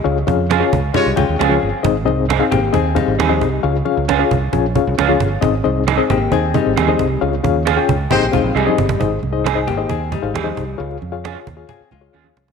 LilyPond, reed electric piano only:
<<
  \new Staff \with { instrumentName = "Reed electric piano" } { \time 4/4 \key aes \major \tempo 4 = 134 << { <g' ees''>8 r2. r8 | r1 | r1 | r1 |
r1 | r1 | r1 | } \\ { <des' f' aes' des'' f''>16 r16 <des' f' aes' des'' f''>8 r16 <des' f' aes' des'' f''>8 r16 <des' f' aes' des'' f''>16 r16 <des' f' aes' des'' g''>8 r16 <des' f' aes' des'' f''>8 r16 | <c' ees' aes' c'' ees''>16 r16 <c' ees' aes' c'' ees''>8 r16 <c' ees' aes' c'' f''>8 r16 <c' ees' aes' c'' ees''>16 r16 <c' ees' aes' c'' f''>8 r16 <c' ees' aes' c'' ees''>8 r16 | <des' f' aes' des'' f''>16 r16 <des' f' aes' des'' f''>8 r16 <des' f' aes' des'' f''>8 r16 <des' f' aes' des'' aes''>16 r16 <des' f' aes' des'' f''>8 r16 <des' f' aes' des'' f''>8 r16 | <c' ees' aes' c'' ees''>16 r16 <c' ees' aes' c'' ees''>8 r16 <c' ees' aes' c'' ees''>8 r16 <c' ees' aes' c'' ees''>16 r16 <c' ees' aes' c'' ees''>8 r16 <c' ees' aes' c'' ees''>8 r16 |
<des' f' aes' des'' f''>16 r16 <des' f' aes' des'' f''>8 r16 <des' f' aes' des'' g''>8 r16 <c' ees' aes' c'' ees''>16 r16 <c' ees' aes' c'' f''>8 r16 <c' ees' aes' c'' ees''>8 r16 | <ees' aes' c'' ees''>8 r16 <ees' aes' c'' ees''>16 r16 <ees' aes' c'' ees''>16 r16 <ees' aes' c'' ees''>8 r8 <ees' aes' c'' f''>16 r16 <ees' aes' c'' ees''>8 r16 | <f' aes' des'' f''>8 r16 <f' aes' des'' f''>16 r16 <f' aes' des'' f''>16 r16 <f' aes' des'' f''>8 r8 <f' aes' des'' f''>16 r16 <f' aes' des'' f''>8 r16 | } >> }
  \new Staff \with { instrumentName = "Reed electric piano" } { \clef bass \time 4/4 \key aes \major des4. r2 r8 | aes,4. r2 r8 | des4. r2 r8 | aes,4. r2 r8 |
des4. r8 aes,4. r8 | aes,4. r2 r8 | des4. r2 r8 | }
>>